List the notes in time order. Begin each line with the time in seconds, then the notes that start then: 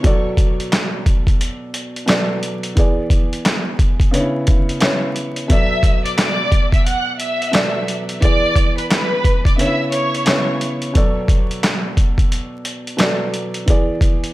0.03 B2 F#3 A4 D5, kick, closed hi-hat
0.37 kick, closed hi-hat
0.60 closed hi-hat
0.72 snare, clap, closed hi-hat
1.06 kick, closed hi-hat
1.27 kick, closed hi-hat
1.41 closed hi-hat
1.74 closed hi-hat
1.96 closed hi-hat
2.06 B2 F#3 A4 D5, snare, clap, closed hi-hat
2.43 closed hi-hat
2.63 closed hi-hat
2.75 E3 B3 G#4 D5, kick, closed hi-hat
3.10 kick, closed hi-hat
3.33 closed hi-hat
3.45 snare, clap, closed hi-hat
3.79 kick, closed hi-hat
4.00 kick, closed hi-hat
4.11 C#3 B3 D4 C#5, closed hi-hat
4.20 E4
4.47 kick, closed hi-hat
4.69 closed hi-hat
4.79 C#3 B3 E4 C#5, snare, clap, closed hi-hat
5.16 closed hi-hat
5.36 closed hi-hat
5.48 B2 F#3 A4 D5 E5 E6, kick, closed hi-hat
5.83 kick, closed hi-hat
6.05 D5 D6, closed hi-hat
6.17 D5 D6, snare, clap, closed hi-hat
6.52 kick, closed hi-hat
6.72 E5 E6, kick, closed hi-hat
6.86 F#5 F#6, closed hi-hat
7.20 E5 E6, closed hi-hat
7.42 closed hi-hat
7.51 B2 F#3 A4 D5, snare, clap, closed hi-hat
7.88 closed hi-hat
8.09 closed hi-hat
8.21 E3 B3 G#4 D5 D6, kick, closed hi-hat
8.56 kick, closed hi-hat
8.77 B4 B5, closed hi-hat
8.90 B4 B5, snare, clap, closed hi-hat
9.24 kick, closed hi-hat
9.45 D5 D6, kick, closed hi-hat
9.57 C#3 B3 D4 C#5 E5 E6, closed hi-hat
9.66 E4
9.92 C#5 C#6, closed hi-hat
10.15 closed hi-hat
10.25 C#3 B3 E4 C#5, snare, clap, closed hi-hat
10.61 closed hi-hat
10.82 closed hi-hat
10.93 B2 F#3 A4 D5, kick, closed hi-hat
11.28 kick, closed hi-hat
11.51 closed hi-hat
11.63 snare, clap, closed hi-hat
11.97 kick, closed hi-hat
12.18 kick, closed hi-hat
12.32 closed hi-hat
12.65 closed hi-hat
12.87 closed hi-hat
12.97 B2 F#3 A4 D5, snare, clap, closed hi-hat
13.34 closed hi-hat
13.54 closed hi-hat
13.66 E3 B3 G#4 D5, kick, closed hi-hat
14.01 kick, closed hi-hat
14.24 closed hi-hat